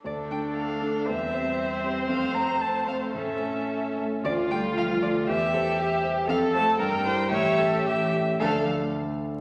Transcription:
X:1
M:2/4
L:1/8
Q:1/4=116
K:Dm
V:1 name="Violin"
d g f2 | e3 z | f b a f | e3 z |
d g f d | e3 z | f a g2 | e2 e2 |
f z3 |]
V:2 name="Violin"
A4 | c4- | c4 | A3 z |
F4 | G4 | A2 B2 | G3 z |
A z3 |]
V:3 name="Viola"
D4 | C4- | C4 | ^C3 z |
F4 | G A G2 | A2 B c | ^c A G z |
A, z3 |]
V:4 name="Grand piano"
D,, [A,DA]2 [A,DA] | E,, [G,Cc]2 [G,Cc] | F,, [A,Cc]2 [A,Cc] | A,, [A,^CA]2 [A,CA] |
D,, [A,FA]2 [A,FA] | E,, [G,Gc]2 [G,Gc] | F,, [A,Fc] G,, [G,EB] | A,, [G,^CA]2 [G,CA] |
[D,,D,A,DAd] z3 |]
V:5 name="Cello" clef=bass
A,4 | G,4 | A,4- | A,3 z |
D, G, F, D, | E,3 z | F, A, G,2 | E,2 E,2 |
F, z3 |]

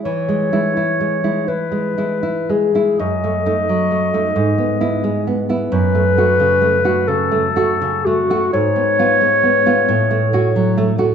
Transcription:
X:1
M:6/8
L:1/16
Q:3/8=44
K:E
V:1 name="Clarinet"
c6 B4 G2 | d8- d2 z2 | B6 A4 F2 | c8- c2 z2 |]
V:2 name="Nylon-string guitar"
E, G, [G,E] E G, [G,E] E G, [G,E] E G, [G,E] | F,, A, [A,D] F, A, [A,D] G,, B, [B,E] G, B, [B,E] | F,, A, [A,F] C, A, [A,F] C, A, [A,F] C, A, [A,F] | _A,, _C [C=F] _A, C [CF] =A,, =A, [A,^F] F, A, [A,F] |]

